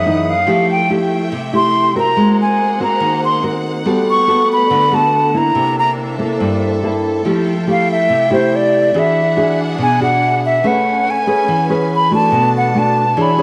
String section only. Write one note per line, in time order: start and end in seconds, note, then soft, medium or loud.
0.00 0.46 A#3 medium
0.00 0.46 G#4 medium
0.00 0.46 F#5 medium
0.00 0.46 D#6 medium
0.47 2.15 A3 medium
0.47 2.15 E5 medium
0.47 2.15 G5 medium
2.16 3.84 A#3 medium
2.16 3.84 G#4 medium
2.16 3.84 C5 medium
2.16 5.52 F#5 medium
3.86 5.54 A3 medium
3.86 5.54 B4 medium
5.54 7.22 A#3 medium
5.54 7.23 D4 medium
5.54 8.90 A4 medium
5.54 7.23 C5 medium
5.54 7.22 E5 medium
7.24 10.60 E5 medium
7.24 8.92 G5 medium
8.94 10.62 D4 medium
8.94 10.62 G#4 medium
8.94 10.62 F#5 medium
10.63 12.31 C#4 medium
10.63 13.14 B4 medium
10.63 12.31 G#5 medium
12.33 13.17 D4 medium
12.33 13.17 A5 medium
13.18 13.42 D4 medium
13.18 13.42 F#4 medium
13.18 13.42 C#5 medium
13.18 13.42 E5 medium
13.18 13.42 G#5 medium